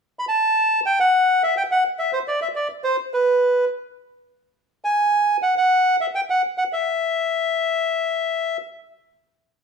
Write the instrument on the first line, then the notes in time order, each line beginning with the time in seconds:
bandoneon
0.19 B5
0.28 A5
0.86 G5
1.00 F#5
1.43 E5
1.57 G5
1.71 F#5
1.99 E5
2.13 C5
2.28 D5
2.42 E5
2.55 D5
2.84 C5
3.14 B4
4.84 G#5
5.42 F#5
5.58 F#5
6.01 E5
6.15 G5
6.30 F#5
6.58 F#5
6.73 E5